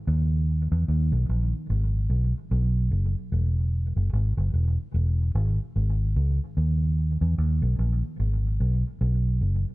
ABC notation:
X:1
M:4/4
L:1/16
Q:"Swing 16ths" 1/4=74
K:Ebphr
V:1 name="Fingered electric bass" clef=bass
E,,3 F,, E,, C,, B,,, z A,,,2 C,, z C,,2 G,,, z | =E,,,3 G,,, ^G,,, _G,,, E,,, z E,,,2 ^G,,, z G,,,2 D,, z | E,,3 F,, E,, C,, B,,, z A,,,2 C,, z C,,2 G,,, z |]